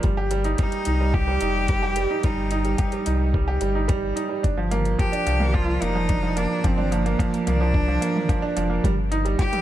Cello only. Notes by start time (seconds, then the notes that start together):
0.59 D#4
1.14 G4
2.25 D#4
4.99 G4
5.55 F4
5.82 D#4
6.38 D4
6.66 C4
6.94 A#3
7.49 D4
9.39 G4